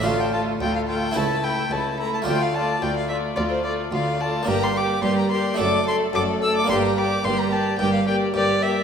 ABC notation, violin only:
X:1
M:4/4
L:1/16
Q:1/4=108
K:Dm
V:1 name="Violin"
f g a2 g f g2 a2 g2 a2 b a | g f a2 g f e2 d c d2 f2 a2 | b c' d'2 c' b c'2 d'2 c'2 d'2 e' d' | c' b d'2 c' b a2 g f g2 d2 e2 |]